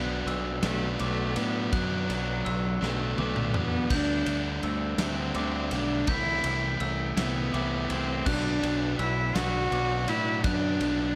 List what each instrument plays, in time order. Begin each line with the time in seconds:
Already playing: fingered electric bass B1, overdriven electric guitar B2 F#3 B3 D4, cello B3, glockenspiel F#6
0.26 fingered electric bass B1, glockenspiel E6, ride
0.63 fingered electric bass B1, overdriven electric guitar B2 F#3 B3 D4, cello A3, snare, ride
0.99 fingered electric bass B1, overdriven electric guitar B2 F#3 B3 D4, cello A3, glockenspiel D6, ride
1.36 fingered electric bass A2, overdriven electric guitar F#3 B3 D4, cello B3, ride
1.72 fingered electric bass F#2, overdriven electric guitar B2 F#3 B3 D4, cello F#3, glockenspiel F#6, kick, ride
2.08 fingered electric bass B1, overdriven electric guitar F#3 B3 D4, ride
2.45 fingered electric bass B1, glockenspiel E6, ride
2.81 fingered electric bass B1, overdriven electric guitar B2 F#3 B3 D4, cello A3, snare
3.16 fingered electric bass B1, overdriven electric guitar B2 F#3 B3 D4, glockenspiel D6, high tom
3.36 mid tom
3.53 fingered electric bass E2, overdriven electric guitar F#3 B3 D4, mid tom
3.57 cello B3
3.89 fingered electric bass D2, overdriven electric guitar D3 G3 A3 D4, glockenspiel G6, kick, ride, crash
3.94 cello D4
4.26 fingered electric bass D2, overdriven electric guitar G3 A3 D4, ride
4.63 fingered electric bass D2, glockenspiel E6, ride
4.98 fingered electric bass D2, overdriven electric guitar D3 G3 A3 D4, cello C4, snare, ride
5.35 fingered electric bass D2, overdriven electric guitar D3 G3 A3, glockenspiel D6, ride
5.39 overdriven electric guitar D4
5.71 fingered electric bass B1, overdriven electric guitar A3 D4, cello D4, ride
5.75 overdriven electric guitar G3
6.07 fingered electric bass C2, overdriven electric guitar C3 E3 A3 E4, cello E4, glockenspiel G6, kick, ride
6.44 fingered electric bass C2, overdriven electric guitar A3 E4, ride
6.48 overdriven electric guitar E3
6.80 fingered electric bass C2, glockenspiel E6, ride
7.17 fingered electric bass C2, overdriven electric guitar C3 E3 A3 E4, cello B3, snare, ride
7.53 fingered electric bass C2, overdriven electric guitar C3 E3 A3 E4, glockenspiel D6, ride
7.90 fingered electric bass C2, overdriven electric guitar E3 A3 E4, cello C4, ride
8.26 fingered electric bass B1, overdriven electric guitar B2 F#3 B3 D4, cello D4, glockenspiel F#6, kick, crash
8.62 fingered electric bass B1, overdriven electric guitar F#3 B3 D4, ride
8.99 fingered electric bass B1, cello E4, glockenspiel E6, ride
9.35 fingered electric bass B1, overdriven electric guitar B2 F#3 B3 D4, cello F#4, snare, ride
9.71 fingered electric bass B1, overdriven electric guitar B2 F#3 B3 D4, glockenspiel D6, ride
10.07 fingered electric bass A2, overdriven electric guitar F#3 B3 D4, cello E4, ride
10.44 fingered electric bass F#2, overdriven electric guitar B2 F#3 B3 D4, cello D4, glockenspiel F#6, kick, ride
10.80 fingered electric bass B1, overdriven electric guitar F#3 B3 D4, ride